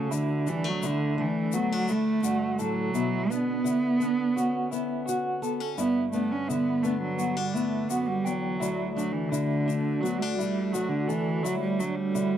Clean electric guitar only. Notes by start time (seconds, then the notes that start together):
Already playing: A4
0.11 E4
0.47 D4
0.83 E4
1.18 D4
1.54 F#4
1.89 E4
2.24 F#4
2.59 A4
2.94 E4
3.30 D4
3.64 E4
4.00 D4
4.36 F#4
4.71 E4
5.06 F#4
5.42 A4
5.78 E4
6.13 D4
6.48 E4
6.83 D4
7.18 F#4
7.54 E4
7.90 F#4
8.25 G5
8.60 E4
8.97 D4
9.32 E4
9.68 D4
10.03 F#4
10.39 E4
10.74 F#4
11.09 A4
11.44 E4
11.80 D4
12.15 E4